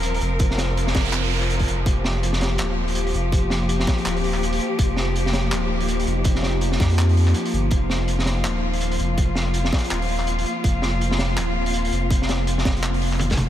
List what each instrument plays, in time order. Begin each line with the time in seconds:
Already playing: sub bass D#1, cello section F3 C4 A#4
0.03 closed hi-hat
0.14 open hi-hat
0.21 sub bass F1, closed hi-hat
0.39 kick, closed hi-hat, noise sweep
0.51 snare
0.58 snare, closed hi-hat
0.77 closed hi-hat
0.87 snare
0.95 sub bass F1, kick, snare, closed hi-hat
1.05 open hi-hat
1.12 clap, closed hi-hat
1.24 open hi-hat
1.31 open hi-hat
1.42 clap
1.50 closed hi-hat
1.59 kick, open hi-hat
1.68 sub bass F1, closed hi-hat
1.86 sub bass F1, synth drone F3 F4, cello section A#3 G4, kick, closed hi-hat
2.04 snare
2.23 closed hi-hat
2.33 snare
2.41 snare, closed hi-hat
2.58 sub bass D#1, clap, closed hi-hat
2.88 open hi-hat
2.95 closed hi-hat
3.07 open hi-hat
3.14 sub bass F1, closed hi-hat
3.32 kick, closed hi-hat
3.50 snare
3.69 closed hi-hat
3.80 snare
3.87 kick, snare, closed hi-hat
3.98 open hi-hat
4.05 sub bass D#1, clap, closed hi-hat
4.16 open hi-hat
4.24 open hi-hat
4.34 clap
4.43 closed hi-hat
4.53 open hi-hat
4.60 closed hi-hat
4.79 sub bass F1, synth drone D#4, kick, closed hi-hat
4.97 snare
5.16 closed hi-hat
5.26 snare
5.33 snare, closed hi-hat
5.52 sub bass D#1, clap, closed hi-hat
5.80 open hi-hat
5.88 closed hi-hat
6.00 open hi-hat
6.07 sub bass F1, closed hi-hat
6.24 kick, closed hi-hat
6.35 snare
6.43 snare
6.61 closed hi-hat
6.72 snare
6.80 sub bass F2, kick, snare, closed hi-hat
6.90 open hi-hat
6.99 clap, closed hi-hat
7.09 open hi-hat
7.17 open hi-hat
7.28 clap
7.34 closed hi-hat
7.46 open hi-hat
7.53 sub bass G1, closed hi-hat
7.71 sub bass F1, synth drone F4, cello section F4, kick, closed hi-hat
7.90 snare
8.08 closed hi-hat
8.19 snare
8.26 snare, closed hi-hat
8.45 sub bass D#1, clap, closed hi-hat
8.73 open hi-hat
8.81 closed hi-hat
8.92 open hi-hat
8.99 sub bass F1, closed hi-hat
9.18 kick, closed hi-hat
9.35 snare
9.54 closed hi-hat
9.64 snare
9.73 kick, snare
9.78 closed hi-hat
9.84 open hi-hat
9.90 sub bass D#1, clap, closed hi-hat
10.02 open hi-hat
10.09 open hi-hat
10.19 clap
10.27 closed hi-hat
10.39 open hi-hat
10.46 closed hi-hat
10.64 sub bass F1, synth drone C4, kick, closed hi-hat
10.82 snare
11.01 closed hi-hat
11.11 snare
11.19 snare, closed hi-hat
11.37 sub bass D#1, clap, closed hi-hat
11.66 open hi-hat
11.74 closed hi-hat
11.85 open hi-hat
11.92 sub bass F1, closed hi-hat
12.10 kick, closed hi-hat
12.22 snare
12.29 snare, closed hi-hat
12.47 closed hi-hat
12.58 snare
12.65 sub bass F1, kick, snare, closed hi-hat
12.77 open hi-hat
12.83 clap, closed hi-hat
12.94 open hi-hat
13.02 open hi-hat
13.13 clap
13.19 closed hi-hat, high tom
13.30 kick, snare, open hi-hat
13.37 sub bass F1, closed hi-hat, mid tom